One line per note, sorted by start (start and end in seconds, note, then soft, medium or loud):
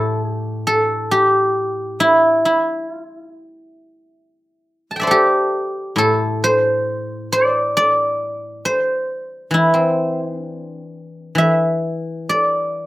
0.00 2.46 A2 medium
0.00 0.33 G4 medium
0.00 0.22 A4 medium
0.22 0.33 G#4 medium
0.33 0.66 G4 medium
0.67 2.87 A4 medium
1.11 3.47 G4 medium
2.00 2.45 E4 medium
2.45 2.91 E4 medium
2.91 3.04 F4 medium
3.04 3.17 E4 medium
3.17 3.30 F4 medium
3.30 5.06 E4 medium
4.91 6.36 A5 soft
4.96 6.72 E5 soft
4.96 6.52 G5 soft
5.01 6.43 C5 medium
5.01 6.86 D5 medium
5.07 7.47 G4 medium
5.07 5.98 A4 medium
5.96 8.61 A2 medium
5.96 8.18 A4 medium
6.44 8.42 C5 loud
7.32 7.76 D5 loud
7.77 9.62 D5 loud
8.65 10.64 C5 medium
9.51 11.34 E3 medium
9.51 10.23 E4 medium
9.74 11.60 C4 soft
10.23 10.39 D#4 medium
10.39 12.15 D4 medium
11.35 12.87 E3 medium
11.35 12.87 E5 medium
12.29 12.87 D5 medium